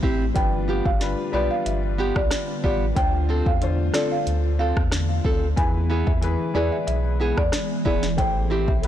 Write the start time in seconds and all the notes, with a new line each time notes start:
Already playing: E3 A3 C4 E4 G4 A4 C5
0.03 A1 C4 E4 G4, kick
0.34 G1 D3 G3 B3 D4 F4 B4 G5, kick, closed hi-hat
0.68 B3 F4 G4
0.85 G1 F5, kick
1.00 G3 D4 F4 B4, snare, closed hi-hat
1.32 B1 G3 B3 D4 F4 G4 B4 D5
1.51 F5
1.66 G1 E5, closed hi-hat
1.98 B3 F4 G4
2.16 C2 D5, kick, cross-stick
2.31 cross-stick, snare, closed hi-hat
2.64 A1 B3 F4 G4 D5, kick
2.95 D2 D3 A3 C4 D4 F4 C5 G5, kick, closed hi-hat
3.29 C4 F4 A4
3.46 E2 F5, kick
3.61 D3 D4 F4 C5, closed hi-hat
3.93 D3 C4 D4 F4 A4 D5, cross-stick, snare
4.12 F5
4.27 D2, closed hi-hat
4.59 C4 F4 A4 F5
4.77 E2, kick, cross-stick
4.92 cross-stick, snare, closed hi-hat
5.24 D2 C4 F4 A4, kick
5.56 E2 E3 G#3 B3 E4 G#4 B4 G#5, kick, closed hi-hat
5.90 B3 E4 G#4
6.07 E2 E5, kick
6.21 E3 E4 G#4 B4, closed hi-hat
6.54 E2 E3 B3 E4 G#4 B4 D5
6.72 E5
6.87 B1 E5, closed hi-hat
7.20 B3 E4 G#4
7.37 E2 D5, kick, cross-stick
7.52 cross-stick, snare, closed hi-hat
7.85 E1 B3 E4 G#4 D5, kick
8.03 snare
8.17 A1 A3 C4 E4 G4 C5 G5, kick, closed hi-hat
8.50 C4 E4 G4
8.68 B1 E5, kick
8.82 A3 E4 G4, closed hi-hat